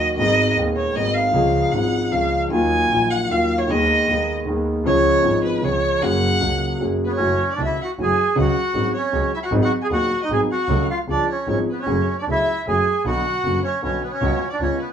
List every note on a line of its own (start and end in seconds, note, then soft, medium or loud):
0.00 0.16 D#2 medium
0.00 0.15 D#3 soft
0.00 0.16 F#3 soft
0.00 0.17 A#3 soft
0.00 0.17 F#4 soft
0.17 0.55 G#1 medium
0.17 0.55 G#2 medium
0.17 0.54 D#3 medium
0.17 0.55 G#3 medium
0.17 0.55 B3 medium
0.17 0.53 D#5 loud
0.21 0.56 G#4 medium
0.56 0.93 D#1 soft
0.56 0.93 D#2 medium
0.56 0.93 D#2 soft
0.56 0.92 D#3 soft
0.56 0.93 G#3 soft
0.56 0.94 B3 soft
0.56 0.94 G#4 soft
0.76 0.97 C#5 medium
0.93 1.32 G#1 soft
0.93 1.32 G#1 medium
0.93 1.32 G#2 medium
0.93 1.31 D#3 soft
0.93 1.31 G#3 soft
0.93 1.32 B3 soft
0.93 1.16 D#5 loud
0.98 1.33 G#4 soft
1.14 1.73 F5 loud
1.31 1.70 C#2 medium
1.31 1.71 C#2 medium
1.31 1.71 C#3 medium
1.31 1.69 F3 medium
1.31 1.70 G#3 medium
1.31 1.71 C#4 medium
1.31 1.71 G#4 medium
1.70 2.10 G#1 soft
1.70 2.10 G#1 medium
1.70 2.10 G#2 soft
1.70 2.08 F3 soft
1.70 2.09 G#3 soft
1.70 2.10 C#4 soft
1.70 2.13 F#5 loud
1.75 2.11 G#4 soft
2.09 2.49 C#2 soft
2.09 2.50 C#2 medium
2.09 2.49 C#3 soft
2.09 2.48 F3 soft
2.09 2.49 G#3 soft
2.09 2.50 C#4 soft
2.09 2.42 F5 medium
2.14 2.50 G#4 soft
2.49 2.89 D#2 medium
2.49 2.50 D#3 medium
2.49 2.88 D#3 medium
2.49 2.88 F#3 soft
2.49 2.89 A#3 soft
2.49 2.90 F4 medium
2.49 3.12 G#5 loud
2.53 2.90 D#2 medium
2.89 3.28 A#1 soft
2.89 3.28 A#1 medium
2.89 3.28 A#2 soft
2.89 3.27 D#3 soft
2.89 3.28 F#3 soft
2.89 3.28 A#3 soft
2.89 3.29 F4 soft
3.10 3.33 F#5 loud
3.28 3.67 D#2 soft
3.28 3.68 D#2 medium
3.28 3.65 D#3 soft
3.28 3.67 F#3 soft
3.28 3.68 A#3 soft
3.28 3.60 F5 medium
3.33 3.68 F4 soft
3.58 3.72 C#5 medium
3.67 4.06 D#2 medium
3.67 3.68 D#3 medium
3.67 4.06 D#3 medium
3.67 4.06 G#3 medium
3.67 4.06 B3 medium
3.67 4.28 D#5 loud
3.71 4.07 G#4 medium
4.07 4.44 D#2 medium
4.07 4.45 D#2 soft
4.07 4.43 D#3 soft
4.07 4.45 G#3 soft
4.07 4.45 B3 soft
4.07 4.46 G#4 soft
4.46 4.83 D#2 soft
4.46 4.84 D#2 medium
4.46 4.83 D#3 medium
4.46 4.83 G#3 soft
4.46 4.84 B3 soft
4.46 4.84 G#4 medium
4.84 5.22 C#2 medium
4.84 5.22 C#3 medium
4.84 5.20 F3 medium
4.84 5.21 G#3 medium
4.84 5.22 C#4 medium
4.84 5.23 G#4 medium
4.84 5.40 C#5 loud
5.22 5.60 G#1 soft
5.22 5.61 G#1 medium
5.22 5.60 G#2 soft
5.22 5.59 F3 soft
5.22 5.60 G#3 soft
5.22 5.61 C#4 soft
5.22 5.61 G#4 soft
5.45 5.66 B4 medium
5.60 5.99 C#2 soft
5.60 6.00 C#2 medium
5.60 5.99 C#3 soft
5.60 5.98 F3 soft
5.60 5.99 G#3 soft
5.60 5.99 C#4 soft
5.65 6.00 G#4 soft
5.65 6.04 C#5 loud
6.01 6.39 F#1 medium
6.01 6.38 F#2 medium
6.01 6.36 F#3 medium
6.01 6.38 A#3 soft
6.01 6.38 C#4 medium
6.01 6.39 G#4 medium
6.01 6.81 F#5 loud
6.38 6.78 C#2 soft
6.38 6.78 C#2 medium
6.38 6.78 C#3 soft
6.38 6.77 F#3 soft
6.38 6.78 A#3 soft
6.38 6.78 C#4 soft
6.43 6.79 G#4 soft
6.78 7.18 F#1 medium
6.78 7.17 F#2 soft
6.78 7.17 F#3 soft
6.78 7.17 A#3 soft
6.78 7.18 C#4 soft
6.78 7.18 G#4 soft
7.04 7.12 B3 medium
7.04 7.11 B4 medium
7.13 7.48 C#5 medium
7.17 7.37 F#1 medium
7.17 7.36 F#2 medium
7.17 7.36 E3 medium
7.17 7.36 F#3 medium
7.17 7.36 A3 medium
7.17 7.54 C#4 medium
7.17 7.36 C#4 medium
7.17 7.36 F#4 medium
7.51 7.59 D5 medium
7.56 7.75 C#2 soft
7.56 7.75 C#3 soft
7.56 7.75 E3 soft
7.56 7.75 A3 soft
7.56 7.75 C#4 soft
7.56 7.62 D4 medium
7.56 7.75 F#4 soft
7.60 7.76 C#2 soft
7.60 7.79 E5 medium
7.65 7.80 E4 medium
7.82 7.92 F#4 medium
7.82 7.90 F#5 medium
7.98 8.14 F#1 medium
7.98 8.14 F#2 medium
7.98 8.14 E3 soft
7.98 8.14 F#3 medium
7.98 8.14 A3 soft
7.98 8.14 C#4 soft
7.98 8.14 F#4 medium
7.98 8.35 G#5 medium
8.03 8.36 G#4 loud
8.35 8.52 C#2 medium
8.35 8.53 C#2 medium
8.35 8.52 C#3 medium
8.35 8.52 F#3 medium
8.35 8.52 G#3 medium
8.35 8.52 C#4 medium
8.35 8.52 G#4 medium
8.35 8.91 F#5 medium
8.41 8.92 F#4 loud
8.73 8.90 G#1 soft
8.73 8.90 G#2 soft
8.73 8.90 F#3 soft
8.73 8.90 G#3 soft
8.73 8.91 C#4 soft
8.73 8.90 G#4 soft
8.95 9.32 C#4 medium
8.95 9.30 C#5 medium
9.12 9.29 C#2 medium
9.12 9.29 C#3 medium
9.12 9.29 F#3 soft
9.12 9.29 G#3 soft
9.12 9.29 C#4 soft
9.12 9.29 G#4 medium
9.34 9.39 E4 medium
9.34 9.38 E5 medium
9.43 9.53 F#4 medium
9.43 9.52 F#5 medium
9.51 9.68 G#1 medium
9.51 9.68 G#2 medium
9.51 9.68 F#3 medium
9.51 9.68 B3 medium
9.51 9.68 D#4 medium
9.51 9.68 G#4 medium
9.62 9.72 F#4 loud
9.62 9.71 F#5 medium
9.81 9.87 G#4 loud
9.81 9.86 G#5 medium
9.89 10.06 D#1 medium
9.89 10.06 D#2 medium
9.89 10.07 D#2 medium
9.89 10.06 F#3 soft
9.89 10.06 B3 soft
9.89 10.07 D#4 soft
9.89 10.22 F#4 loud
9.89 10.07 G#4 soft
9.89 10.18 F#5 medium
10.22 10.32 D#4 medium
10.22 10.30 D#5 medium
10.30 10.46 G#1 medium
10.30 10.46 G#2 medium
10.30 10.46 F#3 soft
10.30 10.46 B3 soft
10.30 10.46 D#4 soft
10.30 10.47 G#4 medium
10.30 10.41 G#4 medium
10.30 10.41 G#5 medium
10.52 10.87 F#4 medium
10.52 10.87 F#5 medium
10.68 10.85 C#2 medium
10.68 10.85 C#3 medium
10.68 10.85 F#3 medium
10.68 10.85 A3 medium
10.68 10.86 C#4 medium
10.68 10.86 A4 medium
10.90 10.99 F4 medium
10.90 10.99 F5 medium
11.07 11.24 C#2 soft
11.07 11.24 C#2 medium
11.07 11.24 C#3 soft
11.07 11.24 F3 soft
11.07 11.24 G#3 soft
11.07 11.24 C#4 soft
11.07 11.24 G#4 soft
11.07 11.28 D5 medium
11.11 11.28 D4 medium
11.30 11.48 C#4 medium
11.30 11.47 C#5 medium
11.46 11.64 G#1 medium
11.46 11.64 G#2 medium
11.46 11.64 F3 soft
11.46 11.64 G#3 soft
11.46 11.64 C#4 soft
11.46 11.64 G#4 soft
11.46 11.57 C#5 medium
11.51 11.59 C#4 medium
11.69 11.80 B3 medium
11.69 11.78 B4 medium
11.79 12.17 C#4 medium
11.79 12.15 C#5 medium
11.86 12.04 F#1 medium
11.86 12.04 F#2 medium
11.86 12.04 F#3 medium
11.86 12.03 A3 medium
11.86 12.04 C#4 medium
11.86 12.04 G#4 medium
12.19 12.25 D4 medium
12.19 12.23 D5 medium
12.27 12.43 C#2 soft
12.27 12.44 C#2 soft
12.27 12.44 C#3 soft
12.27 12.44 F#3 soft
12.27 12.44 A3 soft
12.27 12.44 C#4 soft
12.27 12.44 G#4 soft
12.27 12.65 E5 medium
12.31 12.66 E4 medium
12.66 12.83 F#1 medium
12.66 12.83 F#2 medium
12.66 12.83 F#3 medium
12.66 12.83 A3 soft
12.66 12.83 C#4 soft
12.66 12.83 G#4 medium
12.66 13.03 G#4 medium
12.66 13.03 G#5 medium
13.04 13.21 B1 medium
13.04 13.21 B2 medium
13.04 13.21 D3 medium
13.04 13.21 F#3 medium
13.04 13.21 B3 medium
13.04 13.21 F#4 medium
13.04 13.60 F#4 loud
13.04 13.60 F#5 medium
13.44 13.60 F#1 medium
13.44 13.60 F#2 soft
13.44 13.60 D3 soft
13.44 13.60 F#3 soft
13.44 13.60 B3 soft
13.44 13.60 F#4 soft
13.64 13.81 C#4 medium
13.64 13.82 C#5 medium
13.82 13.98 B1 medium
13.82 13.99 B1 medium
13.82 13.98 B2 medium
13.82 13.98 D3 soft
13.82 13.99 F#3 soft
13.82 13.98 B3 soft
13.82 14.03 C#4 medium
13.82 13.99 F#4 medium
13.82 14.01 C#5 medium
14.03 14.11 B3 medium
14.03 14.11 B4 medium
14.12 14.48 C#4 medium
14.12 14.47 C#5 medium
14.21 14.37 C#2 medium
14.21 14.38 C#2 medium
14.21 14.38 C#3 medium
14.21 14.37 G#3 medium
14.21 14.37 B3 medium
14.21 14.38 F#4 medium
14.50 14.60 D4 medium
14.50 14.59 D5 medium
14.60 14.76 C#2 medium
14.60 14.76 C#3 soft
14.60 14.76 G#3 soft
14.60 14.76 B3 soft
14.60 14.79 C#4 medium
14.60 14.76 F4 soft
14.60 14.78 C#5 medium
14.79 14.90 B3 medium
14.79 14.88 B4 medium